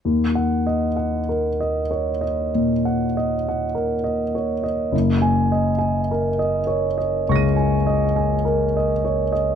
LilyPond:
\new Staff \with { instrumentName = "Grand piano" } { \time 4/4 \key ees \minor \tempo 4 = 51 << { r16 ges''8 r2. r16 | r16 aes''8 r4 r16 <des''' bes''' ees''''>2 | } \\ { ees,8 ees''16 ges''16 bes'16 ees''16 des''16 ees''16 bes,16 ges''16 ees''16 ges''16 bes'16 ees''16 des''16 ees''16 | ges,,8 ees''16 aes''16 bes'16 ees''16 des''16 ees''16 des,16 aes''16 ees''16 aes''16 bes'16 ees''16 des''16 ees''16 | } >> }